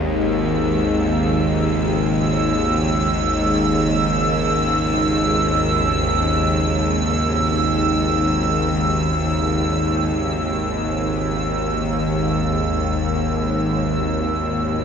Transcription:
0.00 14.84 G#1 medium
0.00 14.84 D#2 medium
0.00 14.84 G#2 medium
0.00 14.84 G#3 medium
0.00 14.84 D#4 medium
0.00 1.90 G4 medium
0.00 14.84 E6 medium
1.08 14.84 C#3 medium

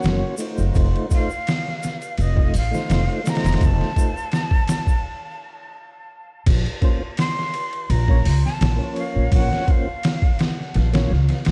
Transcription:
0.00 0.35 A#3 medium
0.00 0.35 C#4 medium
0.00 0.36 F#4 medium
0.00 0.36 C#5 medium
0.00 0.36 F#5 medium
0.00 shaker soft
0.04 0.20 F#1 medium
0.04 snare loud
0.04 ride medium
0.38 1.06 A3 loud
0.38 1.07 D#4 medium
0.38 1.07 F4 medium
0.38 1.08 C5 loud
0.38 ride medium
0.38 shaker medium
0.58 0.73 F#1 medium
0.58 shaker soft
0.75 0.92 F1 medium
0.75 kick loud
0.75 ride medium
0.75 shaker soft
0.96 ride soft
1.09 1.29 A3 medium
1.09 1.30 D#4 medium
1.09 1.31 F4 medium
1.09 1.31 C5 loud
1.09 kick medium
1.09 ride medium
1.09 shaker medium
1.14 2.22 F5 medium
1.30 shaker soft
1.47 snare loud
1.47 ride medium
1.47 shaker soft
1.68 snare soft
1.83 snare medium
1.83 ride medium
1.83 shaker medium
2.02 ride soft
2.02 shaker soft
2.17 2.50 F1 medium
2.17 2.55 D#5 medium
2.17 ride medium
2.17 shaker soft
2.36 2.53 A3 medium
2.36 2.54 D#4 medium
2.36 2.55 F4 medium
2.36 kick medium
2.40 2.56 D#5 medium
2.54 2.71 A1 medium
2.54 3.30 F5 loud
2.54 open hi-hat medium
2.54 shaker medium
2.71 3.20 A3 medium
2.71 3.21 D#4 medium
2.71 3.21 F4 medium
2.71 3.22 C5 medium
2.71 snare soft
2.71 shaker soft
2.90 3.06 F1 medium
2.90 snare loud
2.90 ride medium
2.90 shaker soft
3.24 3.92 A3 loud
3.24 3.92 D#4 medium
3.24 3.93 F4 medium
3.24 3.93 C5 loud
3.24 snare medium
3.24 ride medium
3.24 shaker medium
3.29 3.66 A#5 loud
3.35 snare medium
3.35 ride medium
3.44 3.59 F1 medium
3.44 snare medium
3.44 ride medium
3.44 shaker soft
3.52 snare medium
3.52 ride medium
3.61 3.77 F1 loud
3.61 5.77 A5 loud
3.61 kick loud
3.61 ride medium
3.61 shaker soft
3.81 snare soft
3.95 4.15 A3 medium
3.95 4.15 D#4 medium
3.95 4.16 F4 medium
3.95 4.17 C5 loud
3.95 kick medium
3.95 ride medium
3.95 shaker medium
4.17 shaker soft
4.32 snare loud
4.32 ride medium
4.32 shaker soft
4.51 kick medium
4.68 snare loud
4.68 ride medium
4.68 shaker medium
4.87 kick medium
4.87 shaker medium
6.46 6.63 A#1 medium
6.46 kick loud
6.46 crash loud
6.46 ride loud
6.66 ride soft
6.81 7.01 A#3 medium
6.81 7.02 C#4 medium
6.81 7.02 F4 medium
6.81 7.03 C5 loud
6.81 kick medium
6.81 ride medium
7.17 7.92 C6 loud
7.17 snare loud
7.17 ride medium
7.39 snare soft
7.54 ride medium
7.73 ride soft
7.90 8.21 A#1 loud
7.90 8.44 A#5 loud
7.90 ride medium
8.08 8.25 A#3 medium
8.08 8.26 C#4 medium
8.08 8.26 F4 medium
8.08 8.27 C#5 loud
8.08 kick medium
8.25 8.42 C#2 medium
8.25 open hi-hat medium
8.45 8.93 A5 loud
8.45 snare soft
8.61 8.77 A#1 medium
8.61 snare loud
8.61 ride medium
8.76 9.62 A#3 medium
8.76 9.63 C#4 medium
8.81 9.64 F3 medium
8.81 9.66 C#5 medium
8.96 9.30 F5 medium
8.96 ride medium
9.16 9.30 A#1 medium
9.32 9.49 A#1 medium
9.32 9.71 F#5 medium
9.32 kick loud
9.32 ride medium
9.53 snare medium
9.67 9.87 A#3 medium
9.67 9.88 C#4 medium
9.67 9.88 F4 medium
9.67 9.89 C5 loud
9.67 10.40 F5 medium
9.67 kick medium
9.67 ride medium
10.03 snare loud
10.03 ride medium
10.22 kick loud
10.39 snare loud
10.39 ride medium
10.60 snare soft
10.74 11.07 A#1 loud
10.74 snare soft
10.74 ride medium
10.93 11.11 A#3 medium
10.93 11.11 C#4 medium
10.93 11.12 F4 medium
10.93 11.13 C#5 loud
10.93 snare loud
10.93 ride medium
11.11 11.28 C#2 medium
11.11 snare soft
11.29 snare soft
11.29 ride medium
11.45 11.51 A#1 medium
11.45 snare loud
11.45 ride medium

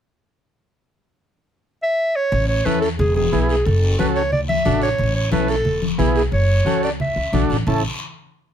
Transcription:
1.83 2.17 E5 loud
2.16 2.48 C#5 loud
2.32 2.59 A1 loud
2.32 low conga medium
2.32 long guiro medium
2.48 2.67 C#5 medium
2.65 3.00 E2 medium
2.65 2.89 C#4 medium
2.65 2.89 E4 medium
2.65 2.89 A4 medium
2.65 2.81 B4 medium
2.65 high conga medium
2.65 short guiro medium
2.81 2.89 A4 loud
2.81 short guiro medium
2.99 3.26 E1 loud
2.99 3.15 G#4 medium
2.99 low conga medium
2.99 long guiro medium
3.16 3.47 G#4 medium
3.16 high conga medium
3.32 3.59 B1 medium
3.32 3.56 B3 medium
3.32 3.56 E4 medium
3.32 3.56 G#4 medium
3.32 high conga medium
3.32 short guiro medium
3.49 3.67 G#4 medium
3.49 short guiro medium
3.65 3.93 F#1 loud
3.65 3.99 A4 medium
3.65 low conga medium
3.65 long guiro medium
3.99 4.32 C#2 medium
3.99 4.22 C#4 medium
3.99 4.22 F#4 medium
3.99 4.23 A4 medium
3.99 4.07 B4 medium
3.99 high conga medium
3.99 short guiro medium
4.16 4.31 C#5 loud
4.16 short guiro medium
4.32 4.59 D2 loud
4.32 4.40 D5 loud
4.32 low conga medium
4.32 long guiro medium
4.49 4.80 E5 loud
4.49 high conga medium
4.65 4.93 A1 medium
4.65 4.89 D4 medium
4.65 4.89 F#4 medium
4.65 4.89 A4 medium
4.65 high conga medium
4.65 low conga medium
4.65 short guiro medium
4.82 5.14 C#5 loud
4.82 short guiro medium
4.98 5.26 A1 loud
4.98 low conga medium
4.98 long guiro medium
5.16 5.31 C#5 medium
5.31 5.65 B1 medium
5.31 5.56 C#4 medium
5.31 5.56 E4 medium
5.31 5.56 A4 medium
5.31 5.48 B4 medium
5.31 high conga medium
5.31 short guiro medium
5.48 5.86 A4 loud
5.48 short guiro medium
5.65 5.92 E1 loud
5.65 low conga medium
5.65 long guiro medium
5.82 high conga medium
5.98 6.26 B1 medium
5.98 6.22 B3 medium
5.98 6.23 E4 medium
5.98 6.23 G#4 loud
5.98 high conga medium
5.98 low conga medium
5.98 short guiro medium
6.16 6.24 G#4 medium
6.16 short guiro medium
6.32 6.59 F#1 loud
6.32 6.80 C#5 loud
6.32 long guiro medium
6.65 7.00 C#2 medium
6.65 6.90 C#4 medium
6.65 6.90 F#4 medium
6.65 6.90 A4 medium
6.65 high conga medium
6.65 short guiro medium
6.83 6.92 D5 medium
6.83 short guiro medium
7.00 7.13 D2 loud
7.00 7.47 E5 medium
7.00 low conga medium
7.00 long guiro medium
7.16 7.31 C#2 medium
7.32 7.48 B1 medium
7.32 7.57 D4 medium
7.32 7.57 F#4 medium
7.32 7.57 A4 medium
7.32 high conga medium
7.32 low conga medium
7.32 short guiro medium
7.50 7.65 A1 medium
7.50 short guiro medium
7.67 7.82 A1 loud
7.67 7.83 C#4 medium
7.67 7.83 E4 medium
7.67 7.83 A4 medium
7.67 7.83 A5 medium
7.67 low conga loud
7.67 long guiro loud

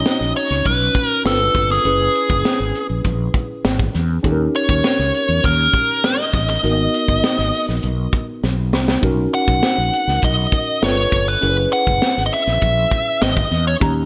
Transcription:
0.00 1.21 C#4 medium
0.00 1.21 D#4 medium
0.00 1.22 F#4 medium
0.00 0.32 D#5 medium
0.00 1.22 A#5 medium
0.05 snare loud
0.05 closed hi-hat medium
0.20 0.32 A#1 medium
0.20 snare soft
0.36 0.67 C#5 medium
0.36 closed hi-hat medium
0.50 0.61 C#2 medium
0.50 snare soft
0.65 0.88 B1 medium
0.65 1.06 B4 medium
0.65 kick medium
0.65 closed hi-hat medium
0.95 kick medium
0.95 closed hi-hat medium
1.06 1.22 A#4 medium
1.25 1.47 G1 medium
1.25 1.85 D4 medium
1.25 1.85 F4 medium
1.25 1.85 A4 medium
1.25 1.71 A4 medium
1.25 1.85 B4 medium
1.25 snare loud
1.25 closed hi-hat medium
1.55 1.77 G1 medium
1.55 kick medium
1.55 snare soft
1.55 closed hi-hat medium
1.70 2.86 G#4 medium
1.70 snare soft
1.84 2.07 F#1 loud
1.84 4.20 C#4 medium
1.84 4.20 E4 medium
1.84 4.20 G#4 medium
1.84 4.21 B4 medium
1.84 closed hi-hat medium
2.15 closed hi-hat medium
2.30 2.41 F#1 medium
2.30 kick medium
2.45 snare loud
2.45 closed hi-hat medium
2.60 2.71 G#1 medium
2.75 closed hi-hat medium
2.89 3.01 A#1 medium
3.04 3.27 A#1 medium
3.04 kick medium
3.04 closed hi-hat medium
3.34 kick medium
3.34 closed hi-hat medium
3.64 3.87 G#1 medium
3.64 snare loud
3.64 closed hi-hat medium
3.79 kick medium
3.94 4.17 E2 medium
3.94 snare soft
3.94 closed hi-hat medium
4.23 4.47 D#2 loud
4.23 6.59 C#4 medium
4.23 6.59 D#4 medium
4.23 6.60 G4 medium
4.23 4.31 A4 medium
4.23 kick loud
4.23 closed hi-hat medium
4.32 6.64 A#4 medium
4.54 5.47 C#5 medium
4.54 closed hi-hat medium
4.69 4.80 D#2 medium
4.69 kick medium
4.84 snare loud
4.84 closed hi-hat medium
4.99 5.10 C#2 medium
4.99 snare soft
5.14 closed hi-hat medium
5.28 5.40 E2 medium
5.43 5.66 D#2 medium
5.43 6.06 A#4 medium
5.43 kick medium
5.43 closed hi-hat medium
5.74 kick medium
5.74 closed hi-hat medium
6.04 6.48 D#5 medium
6.04 snare loud
6.04 closed hi-hat medium
6.34 6.56 A1 medium
6.34 kick medium
6.34 snare soft
6.34 closed hi-hat medium
6.49 7.65 D#5 medium
6.49 snare soft
6.62 6.86 G#1 loud
6.62 6.70 A#3 soft
6.62 8.99 D#4 medium
6.62 8.99 F#4 medium
6.62 9.00 A#4 medium
6.62 closed hi-hat medium
6.69 9.02 B3 medium
6.94 closed hi-hat medium
7.08 7.20 G#1 medium
7.08 kick medium
7.24 snare loud
7.24 closed hi-hat medium
7.38 7.50 G#1 medium
7.38 snare soft
7.54 open hi-hat medium
7.68 7.80 A#1 medium
7.68 snare soft
7.83 8.06 B1 medium
7.83 closed hi-hat medium
8.13 kick medium
8.13 closed hi-hat medium
8.43 8.73 B1 medium
8.43 snare medium
8.73 8.96 C2 medium
8.73 snare medium
8.88 snare medium
9.02 9.25 B1 loud
9.02 10.78 C#4 medium
9.02 10.79 D#4 medium
9.02 10.79 F#4 medium
9.02 10.80 A#4 medium
9.02 kick loud
9.02 closed hi-hat medium
9.33 10.26 F#5 medium
9.33 closed hi-hat medium
9.48 9.59 B1 medium
9.48 kick medium
9.63 snare loud
9.63 closed hi-hat medium
9.78 9.89 A#1 medium
9.93 closed hi-hat medium
10.07 10.19 C#2 medium
10.07 snare soft
10.22 10.45 B1 medium
10.22 10.83 D#5 loud
10.22 kick medium
10.22 closed hi-hat medium
10.52 kick medium
10.52 closed hi-hat medium
10.82 11.05 G1 medium
10.82 11.42 D4 medium
10.82 11.42 F4 medium
10.82 11.42 A4 medium
10.82 11.43 B4 medium
10.82 11.29 C#5 medium
10.82 snare loud
10.82 closed hi-hat medium
11.12 11.35 G1 medium
11.12 kick medium
11.12 closed hi-hat medium
11.28 11.56 B4 medium
11.41 11.65 F#1 loud
11.41 13.77 C#4 medium
11.41 13.77 E4 medium
11.41 13.78 G#4 medium
11.41 11.49 A#4 medium
11.41 closed hi-hat medium
11.50 13.81 B4 medium
11.72 12.22 F#5 loud
11.72 closed hi-hat medium
11.87 11.98 F#1 medium
11.87 kick medium
12.02 snare loud
12.02 closed hi-hat medium
12.17 12.28 G#1 medium
12.17 snare soft
12.26 12.33 D#5 medium
12.32 13.22 E5 medium
12.32 closed hi-hat medium
12.47 12.58 A#1 medium
12.47 snare soft
12.61 12.84 A#1 medium
12.61 kick medium
12.61 closed hi-hat medium
12.91 kick medium
12.91 closed hi-hat medium
13.21 13.44 G#1 medium
13.21 13.64 D#5 medium
13.21 snare loud
13.21 closed hi-hat medium
13.37 kick medium
13.51 13.74 E2 medium
13.51 snare soft
13.51 closed hi-hat medium
13.67 13.75 C#5 medium
13.80 14.04 D#2 loud
13.80 14.05 C#4 medium
13.80 14.05 D#4 medium
13.80 14.05 G4 medium
13.80 14.05 A#5 medium
13.80 kick loud
13.80 closed hi-hat medium

